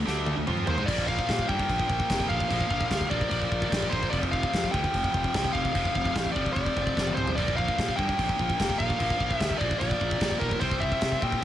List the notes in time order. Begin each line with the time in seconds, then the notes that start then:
0.05 D2 D3 A3 D4, snare
0.26 high tom
0.37 D2 D3 A3
0.47 F2 F3 C4 F4, mid tom
0.57 mid tom
0.67 D#2 D#3 A#3 C5, floor tom
0.78 G#2 G#3 D#4, floor tom
0.86 A#1 A#2 F3 D5, kick, crash
0.91 A#3
0.98 kick
1.08 F5, kick
1.19 kick
1.29 A#2, kick, snare, crash
1.39 kick
1.48 G2 A#2 F3 A#3 G5, kick
1.59 kick
1.69 A#1, kick, crash
1.80 kick
1.90 A#1, kick
2.00 kick
2.10 F1, kick, snare, crash
2.20 kick
2.29 A#1 F5, kick
2.40 kick
2.49 A#1 A#2 F3 A#3, kick, crash
2.61 kick
2.70 A#1, kick
2.81 kick
2.91 D2, kick, snare, crash
3.01 kick
3.10 A#1 A#2 F3 A#3 D5, kick
3.21 kick
3.29 A#1 D5, kick, crash
3.42 kick
3.52 A#1, kick
3.62 kick
3.72 A#1, kick, snare, crash
3.82 kick
3.90 A#1 C5, kick
4.03 kick
4.10 F1 F2 D5, kick, crash
4.14 C3 F3
4.23 kick
4.32 F5, kick
4.43 kick
4.54 F2, kick, snare, crash
4.64 kick
4.71 D2 C3 F3 G5, kick
4.76 F2
4.84 kick
4.94 F1, kick, crash
5.04 kick
5.14 F1, kick
5.24 kick
5.34 C2, kick, snare, crash
5.45 kick
5.53 F1 F5, kick
5.65 kick
5.75 F1 F2 C3 F3, kick, crash
5.85 kick
5.95 F1, kick
6.05 kick
6.15 A1, kick, snare, crash
6.26 kick
6.32 F3 D5
6.36 F1 F2 C3, kick
6.46 kick
6.53 F1 D5, kick, crash
6.66 kick
6.77 F1, kick
6.87 kick
6.97 F1, kick, snare
7.07 high tom
7.14 C2 C5, mid tom
7.27 floor tom
7.35 A#1 A#2 F3 D5, kick, crash
7.40 A#3
7.48 kick
7.56 F5, kick
7.68 kick
7.78 A#2, kick, snare, crash
7.89 kick
7.96 G2 F3 A#3 G5, kick
8.01 A#2
8.09 kick
8.19 A#1, kick, crash
8.29 kick
8.39 A#1, kick
8.50 kick
8.60 F1, kick, snare, crash
8.70 kick
8.78 A#1 F5, kick
8.90 kick
8.99 A#1 A#2 F3 A#3, kick, crash
9.10 kick
9.20 A#1, kick
9.31 kick
9.36 E5, crash
9.40 D2, kick, snare
9.51 kick
9.58 A#1 A#3 D5, kick
9.62 A#2 F3
9.71 kick
9.79 A#1 D5, kick, crash
9.91 kick
10.01 A#1, kick
10.11 kick
10.21 A#1, kick, snare, crash
10.31 kick
10.39 B1 A#4, kick
10.51 kick
10.60 C2 C3 G3 C5, kick, crash
10.64 C4
10.71 kick
10.80 E5, kick
10.92 kick
11.01 C3, kick, snare, crash
11.12 kick
11.22 A#2 C3 G3 C4 G5, kick
11.32 kick